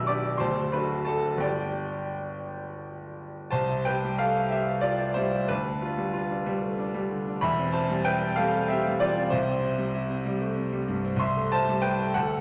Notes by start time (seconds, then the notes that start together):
Already playing: B0 B1 B3 D4 G4 E5 B5 E6
0.07 B3 D4 G4 D5 D6
0.38 D1 D2 C5 A5 C6
0.72 A3 D4 F#4 B4 B5
1.05 A3 D4 F#4 A4 A5
1.38 G1 B3 D4 G5
1.42 G4 D5
3.51 C2 C5 A5
3.69 E4
3.85 G4 B4 G5
4.04 G3
4.19 G4 A4 F5
4.37 E4
4.51 G4 E5
4.68 A4
4.81 F4 G4 D5
5.01 E4
5.14 G3 E4 C5
5.32 E4
5.48 D2 D4 B4
5.66 D4
5.82 F4
5.98 G3
6.14 F4
6.30 D4
6.46 G3
6.62 A3
6.78 D4
6.94 G3
7.11 D3
7.27 D4
7.41 E1 E2 E5 B5
7.58 C4
7.72 E4 C5 A5
7.90 G3
8.05 E4 B4 G5
8.23 C4
8.36 G3 A4 F5
8.54 A3
8.68 C4 G4 E5
8.87 G3
9.00 E3 F4 D5
9.16 C4
9.30 C2 E4 C5
9.48 C4
9.62 E4
9.78 G3
9.94 E4
10.09 C4
10.26 G3
10.41 A3
10.56 C4
10.73 G3
10.88 G2
11.04 C4
11.16 C2 E5 C6
11.37 A3
11.52 E4 C5 A5
11.69 G3
11.82 E4 B4 G5
12.01 A3
12.14 D2 A4 F#5
12.31 A3